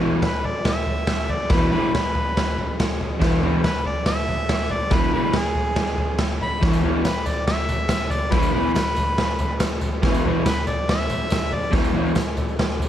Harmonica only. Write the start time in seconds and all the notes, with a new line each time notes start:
0.24 B4
0.46 D5
0.69 E5
1.31 D5
1.51 B4
1.71 B4
1.94 B4
3.63 B4
3.86 D5
4.07 E5
4.72 D5
4.93 B4
5.14 B4
5.37 G#4
6.42 B5
7.05 B4
7.26 D5
7.47 E5
8.11 D5
8.32 B4
8.54 B4
8.74 B4
10.46 B4
10.67 D5
10.90 E5
11.53 D5